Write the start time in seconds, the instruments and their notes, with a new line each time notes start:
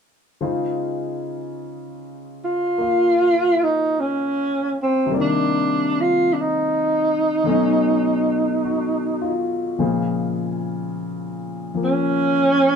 0.41 grand piano C#3 G#3 D#4 F4 C5
2.45 alto saxophone F4
2.78 grand piano A#3 F4
3.63 alto saxophone D#4
4.00 alto saxophone C#4
4.82 alto saxophone C4
5.06 grand piano C3 G3
5.11 grand piano A#3 D5
5.16 grand piano D#3
5.21 alto saxophone D4
6.01 alto saxophone F4
6.33 alto saxophone D4
6.40 alto saxophone D#4
7.44 grand piano B2 F#3 A3
7.48 grand piano C#4 D#4
8.65 grand piano F#4
9.22 grand piano F4
9.79 grand piano A#2 C#3 F3 G#3 C5
11.74 grand piano F3 A#3
11.84 alto saxophone C#4